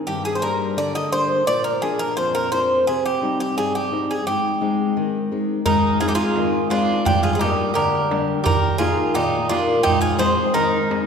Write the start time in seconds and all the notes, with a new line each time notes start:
0.07 G2 G4
0.25 G#4
0.35 C5
0.42 G3 A#3 D4 A#4
0.77 D3 D5
0.95 D#5
1.12 G3 A#3 D4 C5
1.47 A#2 D5
1.64 A#4
1.82 F3 A#3 D4 G#4
1.99 A#4
2.17 F2 C5
2.35 A#4
2.52 F3 A#3 D4 C5
2.87 C3 G#4
3.06 G4
3.22 G3 C4 D#4
3.40 G4
3.57 G2 G#4
3.75 G4
3.91 G3 C4 D#4
4.11 G#4
4.27 G#2 G4
4.61 G#3 C4 D#4
4.97 D#3
5.31 G#3 C4 D#4
5.66 G#2 D#4 A#4, darbuka dum
6.00 G#3 C4 D#4 F4 G#4
6.08 D#4 G4
6.15 F4 G#4
6.36 D#3, darbuka tek
6.70 G#3 C4 D4 F4, darbuka tek
6.89 darbuka tek
7.05 G2 D4 G4, darbuka dum
7.23 F4 G#4
7.33 F4 G#4
7.39 G3 A#3 D#4 G4 D5, darbuka tek
7.74 D3 G4 A#4, darbuka tek
8.11 G3 A#3 D4, darbuka tek
8.28 darbuka tek
8.44 D#3 G4 A#4, darbuka dum
8.78 A#3 D#4 F4 G#4 G5, darbuka tek
9.14 A#2 D#4 G4, darbuka tek
9.49 D#3 A#3 D4 F4 G4, darbuka tek
9.69 darbuka tek
9.83 G#2 D#4 G4, darbuka dum
10.01 F4 G#4, darbuka tek
10.19 G#3 C4 D#4 G#4 C5, darbuka tek
10.54 D#3 D#4 A#4, darbuka tek
10.90 G#3 C4 D#4, darbuka tek